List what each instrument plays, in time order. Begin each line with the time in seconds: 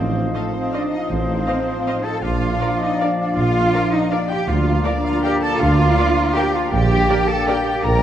Already playing: tuba A1, double bass section A1, harp A2 F3 F4 F5, french horn section F3 D#4, bassoon F3, violin section C5, clarinet C5, oboe D#5, flute section F5
0.00 cello section C4
0.05 harp A3
0.14 harp C4
0.24 harp D#4
0.33 cello section A3, harp F4, clarinet A4, violin section A4 F5, viola section C5 D#5
0.43 harp C5
0.53 cello section C4, violin section C5, clarinet C5, harp D#5
0.63 harp F5
0.71 cello section D4, viola section C5 D#5, violin section D5 F5, clarinet D5
0.83 harp F4
0.90 harp D#4, cello section D#4, violin section D#5, clarinet D#5
1.02 harp C4
1.08 tuba A1, double bass section A1, harp A2, cello section C4, violin section C5, clarinet C5
1.19 harp A3
1.28 harp C4
1.37 harp D#4
1.47 harp F4, viola section C5 D#5, violin section F5
1.57 harp C5
1.67 harp D#5
1.77 harp F5
1.87 viola section C5 D#5, harp D#5, violin section F5
1.96 harp F4
2.04 harp D#4, cello section A4, clarinet A5, violin section A5
2.14 harp C4
2.22 tuba A#1, double bass section A#1, harp A#2, bassoon F3, french horn section F3 D4, cello section F4, oboe D5, violin section F5, clarinet F5, flute section F5
2.31 harp F3
2.40 harp A#3
2.50 harp D4
2.59 harp F4, viola section A#4 D5, violin section F5
2.70 harp A#4
2.78 cello section D#4, harp D5, clarinet D#5, violin section D#5
2.90 harp F5
2.98 cello section D4, viola section A#4 D5, clarinet D5, harp D5, violin section D5 F5
3.08 harp F4
3.17 harp D4, cello section D4, clarinet D5, violin section D5
3.27 harp A#3
3.36 tuba A#1, double bass section A#1, harp A#2, cello section F4, clarinet F5, violin section F5
3.45 harp F3
3.55 harp A#3
3.64 harp D4
3.72 viola section A#4 D5, violin section F5
3.82 harp A#4
3.92 cello section D#4, harp D5, clarinet D#5, violin section D#5
4.02 harp F5
4.11 cello section D4, viola section A#4 D5, harp D5, clarinet D5, violin section D5 F5
4.20 harp F4
4.29 harp D4, cello section G4, violin section G5, clarinet G5
4.40 harp A#3
4.47 tuba D2, double bass section D2, harp D3, bassoon F3, french horn section A#3 D4, cello section F4, oboe D5, violin section F5, clarinet F5, flute section A#5
4.57 harp A#3
4.67 harp D4
4.77 harp A#4
4.84 cello section D4, harp D4, viola section A#4 D5, clarinet D5, violin section D5 F5
5.04 cello section F4, violin section F5, clarinet F5, harp A#5
5.14 harp D5
5.23 cello section G4, viola section A#4 D5, violin section F5 G5, clarinet G5, harp A#5
5.41 harp D4, cello section A4, violin section A5, clarinet A5
5.50 harp A#3
5.57 double bass section D2, tuba D2, harp D3, cello section F4, violin section F5, clarinet F5
5.68 harp D4
5.76 harp A#3
5.85 harp A#4
5.96 harp D4, viola section A#4 D5, violin section F5
6.05 harp D5
6.25 harp D5
6.33 cello section G4, viola section A#4 D5, violin section F5 G5, clarinet G5, harp A#5
6.53 harp D4, cello section F4, clarinet F5, violin section F5
6.62 harp A#3
6.72 tuba A#1, double bass section A#1, harp A#2, bassoon A#3, cello section G4, oboe D5, violin section G5, flute section G5, clarinet G5
6.80 harp G3
6.99 harp D4
7.08 french horn section A#3 D4, viola section A#4 D5, violin section D5
7.28 cello section A4, harp D5, clarinet A5, violin section A5
7.37 harp G5
7.47 french horn section A#3 D4, cello section G4, viola section A#4 D5, harp D5, violin section D5 G5, clarinet G5
7.66 harp D4
7.75 harp A#3
7.84 tuba A#1, double bass section A#1, harp A#2, cello section A#4, violin section A#5, clarinet A#5
7.93 harp G3